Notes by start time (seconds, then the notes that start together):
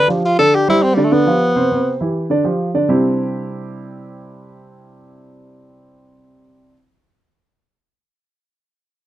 0.08 F3 D4 F4 G4
0.25 F4
0.39 D3 D4 A4 D5
0.55 G4
0.68 G3 E4 G4 C5
0.83 C4
0.94 D3 G3 D4 D5
1.04 A3
1.12 D3 B3 D4 D5
1.26 F3 F4 G4
1.56 C3 C4 C5
1.71 C3 C4 C5
2.00 E3 E4 G4
2.30 D3 D4 D5
2.44 F3 F4 G4
2.74 D3 D4 D5
2.89 C3 G3 C4 D4 E4 G4